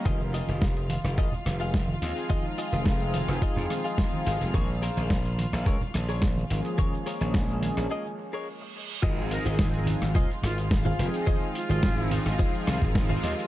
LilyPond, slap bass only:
\new Staff \with { instrumentName = "Slap bass" } { \clef bass \time 4/4 \key aes \major \tempo 4 = 107 f,,8 r16 f,,8. r16 f,,16 aes,,16 r16 f,,8. r16 ees,16 r16 | r8. f,,8. r16 f,,16 r16 f,16 r4 aes,,16 f,,16 | bes,,8 r16 bes,,8. r16 bes,,16 des,16 r16 bes,,8. r16 aes,,16 r16 | r8. bes,,8. r16 bes,,16 r2 |
aes,,8 r16 aes,,8. r16 aes,,16 c,16 r16 aes,,8. r16 f,,16 r16 | r8. aes,,8. r16 aes,,16 r8 c,16 aes,,8 r16 ees,16 r16 | }